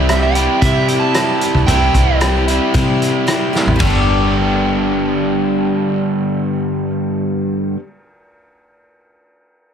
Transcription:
Already playing: C2 C3 E3 G3 C4 E4
0.09 G3 C4 E4 G4 E5, cross-stick, closed hi-hat
0.23 E5
0.35 C3 E3 G3 C4 E4 G5, closed hi-hat
0.61 C3 G3 C4 E4 G4 E5, kick, closed hi-hat
0.88 G5, closed hi-hat
1.00 A5
1.14 G3 C4 E4 G4, cross-stick, closed hi-hat
1.41 C4 E4 G4, closed hi-hat
1.55 C2, kick
1.66 C2 C3 E3 G3 C4 E4 G4 G5, kick, closed hi-hat
1.71 E4
1.94 C2 C4 E4 G4, kick, closed hi-hat
2.20 G3 C4 E4 G4, cross-stick, closed hi-hat
2.48 C3 E3 G3 C4 E4, closed hi-hat
2.74 C3 G3 C4 E4 G4, kick, closed hi-hat
3.02 closed hi-hat
3.27 G3 C4 E4 G4, cross-stick, closed hi-hat
3.53 C4 E4 G4, snare
3.67 A1, floor tom
3.76 G2 D3
3.80 G1 D3 G3 B3 D4 G4, kick, ride
3.85 B3 D4
3.90 G4

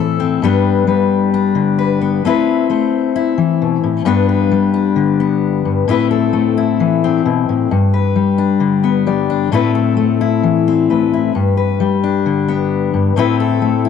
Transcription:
Already playing: A2 E3 A3 C4 E4
0.00 A4
0.20 C4
0.42 G2 G3 B3 D4 B4
0.87 G3 B4
1.34 D4
1.55 D3
1.78 B4
2.01 B3
2.25 A3 C4 E4 B4, muted steel-string acoustic guitar stroke
2.70 A3 C5
3.16 E4
3.38 E3
3.62 B2
3.84 A2
4.05 G2 G3 B3 D4 B4
4.29 B4
4.51 G3
4.74 D4
4.96 D3
5.20 B3
5.65 G2
5.88 A2 A3 C4 E4 B4
6.11 A4
6.33 A3
6.58 E4
6.80 E3
7.04 C4
7.25 B2
7.49 A2
7.71 G2
7.94 B4
8.16 G3
8.38 D4
8.60 D3
8.84 B3
9.07 G3 D5
9.30 D4
9.52 A2 A3 C4 E4 B4
9.75 A4
9.97 A3
10.21 E4
10.43 E3
10.68 C4
10.90 A3 B4
11.13 E4
11.35 G2
11.57 B4
11.80 G3
12.04 D4
12.26 D3
12.48 B3
12.94 G2
13.16 A2 A3 C4 E4 B4
13.40 A4
13.62 A3
13.85 E4

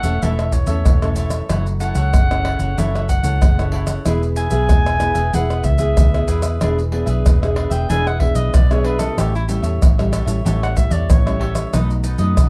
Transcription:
Already playing: E3 F#5
0.03 E1 A3 C#4 A4 C#5 E5, pandeiro, maracas
0.22 E1 E3 A3 C#4 E4 A4 C#5 E5, pandeiro, maracas, surdo
0.39 A4 C#5 E5, pandeiro, tamborim, maracas
0.52 C#5, muted cavaquinho stroke, pandeiro, maracas, surdo
0.67 E2 A3 C#4 A4 C#5 E5, pandeiro, maracas
0.86 E1 E3, pandeiro, tamborim, maracas, surdo
1.02 A3 C#4 A4 C#5 E5, pandeiro, tamborim, maracas
1.16 E4 A4 C#5 E5, pandeiro, maracas
1.30 A4 C#5 E5, pandeiro, tamborim, maracas
1.50 F#1 F#3 C#4 E4 A4 C#5 F#5, pandeiro, tamborim, maracas, surdo
1.66 muted cavaquinho stroke, pandeiro, maracas
1.80 C#4 E4 A4 C#5 F#5, pandeiro, maracas
1.95 C#2 A4 C#5 F#5, pandeiro, maracas
2.14 F#1 C#3, pandeiro, tamborim, maracas, surdo
2.31 C#4 E4 A4 C#5 F#5, pandeiro, tamborim, maracas
2.45 E4 A4 C#5 F#5, pandeiro, tamborim
2.59 F#1 A4 C#5 F#5, pandeiro, maracas
2.77 F#1 F#3 C#4 E4 A4 C#5 E5 F#5, pandeiro, maracas, surdo
2.95 A4 C#5 F#5, pandeiro, tamborim, maracas
3.09 F#5, muted cavaquinho stroke, pandeiro, maracas, surdo
3.23 C#2 C#4 E4 A4 C#5 F#5, pandeiro, maracas
3.41 F#1 C#3, pandeiro, tamborim, maracas, surdo
3.59 C#4 E4 A4 C#5 F#5, pandeiro, tamborim, maracas
3.72 E4 A4 C#5 F#5, pandeiro
3.87 A4 C#5 F#5, pandeiro, tamborim, maracas
4.06 E1 E3 B3 E4 G#4 B4 E5, pandeiro, tamborim, maracas, surdo
4.23 muted cavaquinho stroke, pandeiro, maracas
4.36 E4 G#4 B4 E5 G#5, pandeiro, maracas
4.50 B1 B3 E4 G#4 B4 E5, pandeiro, maracas
4.69 E1 B2, pandeiro, tamborim, maracas, surdo
4.86 G#4 B4 E5, pandeiro, tamborim, maracas
5.00 B3 E4 G#4 B4 E5, pandeiro, tamborim, maracas
5.15 E1 G#4 B4 E5, pandeiro, maracas
5.33 E1 E3 B3 E4 G#4 B4 E5 F#5, pandeiro, maracas, surdo
5.50 G#4 B4 E5, pandeiro, tamborim, maracas
5.64 C#2 E5, muted cavaquinho stroke, pandeiro, maracas, surdo
5.78 B3 E4 G#4 B4 E5, pandeiro, maracas
5.97 D2 B2, pandeiro, tamborim, maracas, surdo
6.14 B3 E4 G#4 B4 E5, pandeiro, tamborim, maracas
6.28 E2 E4 G#4 B4 E5, pandeiro, maracas
6.42 G#4 B4 E5, pandeiro, tamborim, maracas
6.61 E1 E3 B3 D4 G#4 B4 E5, pandeiro, tamborim, maracas, surdo
6.78 muted cavaquinho stroke, pandeiro, maracas
6.92 B3 D4 G#4 B4 E5, pandeiro
7.06 B1 G#4 B4 E5, pandeiro, maracas
7.26 E1 B2, pandeiro, tamborim, maracas, surdo
7.42 B3 D4 G#4 B4 E5, pandeiro, tamborim, maracas
7.55 D4 G#4 B4 E5, pandeiro, tamborim
7.70 E1 G#4 B4 E5 G5, pandeiro, maracas
7.89 E1 E3 B3 D4 G#4 B4 E5 G#5, pandeiro, maracas, surdo
8.06 G#4 E5 F#5, pandeiro, tamborim, maracas
8.20 B3 D4 G#4 E5, muted cavaquinho stroke, pandeiro, surdo
8.35 B1 G#4 B4 D#5 E5, pandeiro, maracas
8.54 B1 B2 D5, pandeiro, tamborim, maracas, surdo
8.71 B3 D4 G#4 B4 C#5 E5, pandeiro, tamborim, maracas
8.84 D4 G#4 B4 E5, pandeiro
8.99 G3 C#4 E4 G#4 A4 B4 E5, pandeiro, tamborim, maracas
9.18 A1 A2 G4 A4 C#5 E5, pandeiro, tamborim, maracas, surdo
9.35 E4, muted cavaquinho stroke, pandeiro, maracas
9.48 G3 C#4 E4 G4 A4 C#5 E5, pandeiro, maracas
9.62 E2 A4 C#5 E5, pandeiro, maracas
9.82 A1 E3, pandeiro, tamborim, maracas, surdo
9.98 G3 C#4 E4 A4 C#5 E5, pandeiro, tamborim, maracas
10.12 G4 A4 C#5 E5, pandeiro, tamborim, maracas
10.26 A1 G3 C#4 E4 A4 C#5 E5, pandeiro, maracas
10.45 A1 A2 G3 C#4 E4 G4 A4 C#5 E5, pandeiro, maracas, surdo
10.62 A4 C#5 E5 F#5, pandeiro, tamborim, maracas
10.75 G3 C#4 E4 E5, muted cavaquinho stroke, pandeiro, maracas, surdo
10.90 E2 A4 C#5 D5 E5, pandeiro, maracas
11.10 A1 E3 C#5, pandeiro, tamborim, maracas, surdo
11.26 G3 C#4 E4 A4 C#5 E5, pandeiro, tamborim, maracas
11.39 G4 A4 C#5 E5, pandeiro
11.55 A4 C#5 E5, pandeiro, tamborim, maracas
11.73 B1 B2 F#3 A3 D#4 A4 B4 D#5, pandeiro, tamborim, maracas, surdo
11.90 muted cavaquinho stroke, pandeiro, maracas
12.04 D#4 A4 B4 D#5, pandeiro, maracas
12.18 F#2 F#3 A3 D#4 A4 B4 D#5, pandeiro, maracas
12.37 B1 F#2, pandeiro, tamborim, maracas, surdo

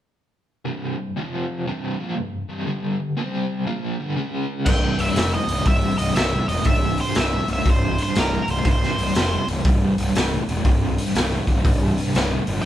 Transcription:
0.65 C2 G2 C3
0.98 C2 G2
1.16 F2 C3 F3
1.66 C2 G2 C3
2.00 A#2 F3 A#3
2.16 C2 G2
2.49 C2 G2 C3
2.66 G2 D3 G3
2.99 G2 D3
3.17 C3 G3 C4
3.65 A#2 F3 A#3
3.99 G2 D3 G3
4.16 C#3 G#3 C#4
4.66 C1 C2 G2 G5, kick, crash
4.98 C1 C2 G2 E5, open hi-hat
5.14 F1 C2 A2, snare, open hi-hat
5.34 D#5
5.48 C1 C2 A2, open hi-hat
5.66 C1 C2 G2 E5, kick, open hi-hat
5.98 C1 C2 G2 D#5, open hi-hat
6.15 C1 C2 A2 E5, snare, open hi-hat
6.48 E1 C2 A2 D#5, open hi-hat
6.64 C1 C2 G2 E5, kick, open hi-hat
6.98 C2 G2 C5, open hi-hat
7.15 C1 C2 A2 E5, snare, open hi-hat
7.48 C1 C2 A2, open hi-hat
7.53 E5
7.65 C1 C2 G2, kick, open hi-hat
7.70 C5
7.98 C2 G2, open hi-hat
8.03 C5
8.15 C1 C2 A2, snare, open hi-hat
8.20 A#4
8.48 C1 C2 A2 C5, open hi-hat
8.65 C1 C2 G2, kick, open hi-hat
8.71 C5
8.83 snare
8.98 C1 C2 G2, open hi-hat
9.15 F1 C2 A2, snare, open hi-hat
9.48 C1 C2 A2, open hi-hat
9.65 C1 C2 G2, kick, open hi-hat
9.98 C1 C2 G2, open hi-hat
10.15 C1 C2 A2, snare, open hi-hat
10.49 E1 C2 A2, open hi-hat
10.65 C1 C2 G2, kick, open hi-hat
10.98 C2 G2, open hi-hat
11.15 C1 C2 A2, snare, open hi-hat
11.47 C1 C2 A2, kick, open hi-hat
11.65 C1 C2 G2, kick, open hi-hat
11.98 C2 G2, open hi-hat
12.14 C1 C2 A2, snare, open hi-hat
12.46 G1 C2 A2, open hi-hat

